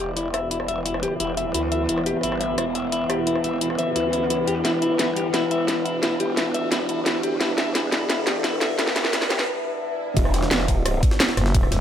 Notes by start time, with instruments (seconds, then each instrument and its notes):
Already playing: wobble bass E1, synth drone E3 B3 E4, riser
0.17 clean electric guitar E4, closed hi-hat
0.34 clean electric guitar E5, cross-stick, closed hi-hat
0.51 clean electric guitar E4, closed hi-hat
0.60 cross-stick
0.68 wobble bass E1, clean electric guitar E5, closed hi-hat
0.86 clean electric guitar E4, closed hi-hat
0.94 cross-stick
1.03 clean electric guitar G4, closed hi-hat
1.20 wobble bass E1, clean electric guitar E4, closed hi-hat
1.37 clean electric guitar E5, closed hi-hat
1.54 wobble bass D2, clean electric guitar E4, closed hi-hat
1.72 clean electric guitar E5, closed hi-hat
1.89 wobble bass E1, clean electric guitar E4, closed hi-hat
1.98 cross-stick
2.06 clean electric guitar G4, closed hi-hat
2.23 wobble bass G1, clean electric guitar E4, closed hi-hat
2.32 cross-stick
2.41 clean electric guitar E5, closed hi-hat
2.58 wobble bass E1, clean electric guitar E4, cross-stick, closed hi-hat
2.75 clean electric guitar E5, closed hi-hat
2.92 clean electric guitar E4, closed hi-hat
3.10 clean electric guitar G4, cross-stick, closed hi-hat
3.27 clean electric guitar E4, closed hi-hat
3.35 cross-stick
3.44 wobble bass E1, clean electric guitar E5, closed hi-hat
3.61 clean electric guitar E4, closed hi-hat
3.70 cross-stick
3.79 clean electric guitar E5, closed hi-hat
3.96 wobble bass D2, clean electric guitar E4, closed hi-hat
4.13 clean electric guitar E4, closed hi-hat
4.30 clean electric guitar E4, closed hi-hat
4.47 wobble bass E2, clean electric guitar G4, closed hi-hat
4.65 wobble bass E1, synth drone D4, clean electric guitar E4, snare, closed hi-hat
4.82 clean electric guitar E4, closed hi-hat
4.99 wobble bass G1, clean electric guitar E4, snare, closed hi-hat
5.16 clean electric guitar G4, closed hi-hat
5.34 wobble bass E1, clean electric guitar E4, snare, closed hi-hat
5.51 clean electric guitar E5, closed hi-hat
5.68 clean electric guitar E4, snare, closed hi-hat
5.86 clean electric guitar E4, closed hi-hat
6.03 clean electric guitar E4, snare, closed hi-hat
6.20 wobble bass E1, clean electric guitar G4, closed hi-hat
6.37 clean electric guitar E4, snare, closed hi-hat
6.54 clean electric guitar E5, closed hi-hat
6.72 wobble bass E1, clean electric guitar E4, snare, closed hi-hat
6.89 clean electric guitar E4, closed hi-hat
7.06 wobble bass D2, clean electric guitar E4, snare, closed hi-hat
7.23 clean electric guitar G4, closed hi-hat
7.41 wobble bass E1, clean electric guitar E4, snare, closed hi-hat
7.58 clean electric guitar E5, snare, closed hi-hat
7.75 wobble bass G1, clean electric guitar E4, snare, closed hi-hat
7.92 clean electric guitar E4, snare, closed hi-hat
8.10 wobble bass E1, clean electric guitar E4, snare, closed hi-hat
8.27 clean electric guitar G4, snare, closed hi-hat
8.44 clean electric guitar E4, snare, closed hi-hat
8.61 clean electric guitar E5, snare, closed hi-hat
8.79 clean electric guitar E4, snare, closed hi-hat
8.87 snare
8.96 wobble bass E1, clean electric guitar E4, snare, closed hi-hat
9.05 snare
9.13 clean electric guitar E4, snare, closed hi-hat
9.22 snare
9.30 clean electric guitar G4, snare, closed hi-hat
9.39 snare
9.48 swell
10.17 wobble bass E1, synth drone E3 B3 F#4 E5, kick, closed hi-hat, ride, impact
10.25 cross-stick
10.34 snare, closed hi-hat, ride
10.42 snare
10.51 snare, closed hi-hat, ride
10.60 cross-stick, snare
10.68 kick, closed hi-hat, ride
10.86 cross-stick, closed hi-hat, ride
11.03 kick, closed hi-hat, ride
11.11 snare
11.20 snare, closed hi-hat, ride
11.29 snare
11.37 fm bass F#1, cross-stick, snare, closed hi-hat, ride
11.46 snare
11.55 kick, closed hi-hat, ride
11.63 cross-stick
11.72 fm bass E1, snare, closed hi-hat, ride